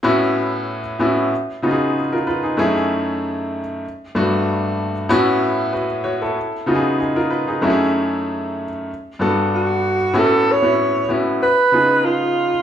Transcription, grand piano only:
0.03 A2 B3 C#4 E4 F#4
0.99 A2 B3 C#4 E4 F#4
1.62 C#3 B3 D#4 F4 F#4
1.71 G#4
2.13 F4 A#4
2.27 F4 B4
2.43 D#4 G#4
2.57 F#2 A3 C#4 E4 G#4
4.15 G2 A3 B3 D4 F#4
5.09 A2 B3 C#4 E4 F#4
5.73 F#4 B4
6.04 F#4 C#5
6.22 E4 A4
6.66 C#3 B3 D#4 F4 F#4
6.75 G#4
7.00 D#4 G#4
7.16 F4 A#4
7.31 F4 B4
7.47 D#4 G#4
7.62 F#2 A3 C#4 E4 F#4
7.70 G#4
9.19 G2 B3 D4 F#4 A4
10.13 A2 B3 C#4 E4 F#4
10.62 A2 B3 C#4 E4 F#4
11.09 A2 B3 C#4 E4 F#4
11.72 C#3 B3 D#4 F4 G#4

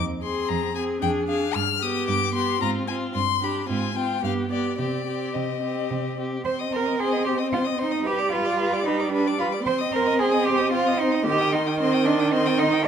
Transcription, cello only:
Already playing: F2
0.50 F2
1.02 F2
1.55 G2
2.08 G2
2.62 G#2
3.15 G2
3.70 G#2
4.23 G2
4.78 C3
5.35 C3
5.90 C3
6.45 C5
6.73 A#4
6.99 G#4
7.26 G4
7.53 F4
7.80 D#4
8.06 G4
8.32 F4
8.86 D#4
9.12 D4
9.39 F4
9.66 C5
9.93 A#4
10.19 G#4
10.46 G4
10.73 F4
10.99 D#4
11.26 G4
11.52 D#4
11.79 C4
12.05 D4
12.32 C4
12.58 D#4
12.85 D#5

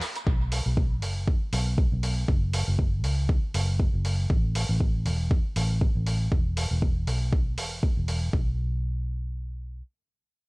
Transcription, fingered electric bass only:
0.27 B1
0.66 B1
1.02 F#1
1.53 B1
1.92 B1
2.28 F#1
2.68 F#1
3.04 C#2
3.54 F#1
3.94 F#1
4.30 A1
4.69 A1
5.06 E1
5.56 A1
5.95 A1
6.32 E1
6.71 E1
7.07 B1
7.58 E1
7.97 E1
8.33 B1

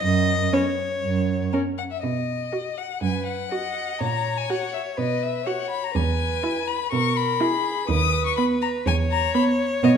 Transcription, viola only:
0.53 C#4
1.54 C#4
2.53 F#4
3.51 F#4
4.50 F#4
5.47 F#4
6.43 E4
7.41 E4
8.38 B3
9.35 B3
9.83 B3

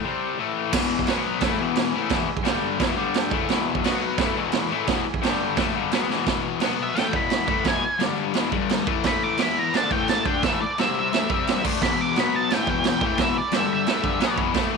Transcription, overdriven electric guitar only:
0.04 C3 G3 C4
0.38 A2 E3 A3
0.73 E2 B2 E3
1.08 B2 F#3 B3
1.41 A2 E3 A3
1.59 E2 B2 E3
1.93 A2 E3 A3
2.10 E2 B2 E3
2.28 muted overdriven electric guitar stroke
2.43 G2 D3 G3
2.78 E2 B2 E3
2.96 G2 D3 G3
3.32 A2 E3 A3
3.49 E2 B2 E3
3.84 B2 F#3 B3
4.18 A2 E3 A3
4.36 E2 B2 E3
4.70 A2 E3 A3
4.87 E2 B2 E3
5.05 muted overdriven electric guitar stroke
5.22 G2 D3 G3
5.57 A2 E3 A3
5.74 G2 D3 G3
5.92 B2 F#3 B3
6.08 E2 B2 E3
6.26 E2 B2 E3
6.61 B2 F#3 B3
6.95 A2 E3 A3
7.12 E2 B2 E3
7.47 A2 E3 A3
7.65 E2 B2 E3
7.84 muted overdriven electric guitar stroke
7.99 G2 D3 G3
8.35 E2 B2 E3
8.51 G2 D3 G3
8.87 A2 E3 A3
9.05 A2 E3 A3
9.39 E3 B3 E4
9.74 D3 A3 D4
9.91 A2 E3 A3
10.25 D3 A3 D4
10.44 A2 E3 A3
10.61 muted overdriven electric guitar stroke
10.79 C3 G3 C4
11.12 A2 E3 A3
11.29 C3 G3 C4
11.63 D3 A3 D4
11.82 E2 B2 E3
12.16 B2 F#3 B3
12.51 A2 E3 A3
12.69 E2 B2 E3
13.02 A2 E3 A3
13.19 E2 B2 E3
13.37 muted overdriven electric guitar stroke
13.52 G2 D3 G3
13.87 A2 E3 A3
14.03 G2 D3 G3
14.20 B2 F#3 B3
14.36 E2 B2 E3
14.54 A2 E3 A3

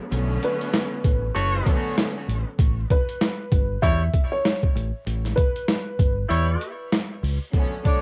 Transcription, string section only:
0.09 D3 F#3 A3 B3 C#4
1.62 D3 F#3 A3 B3 C#4
7.53 D3 F#3 A3 B3 C#4
7.83 D3 F#3 A3 B3 C#5

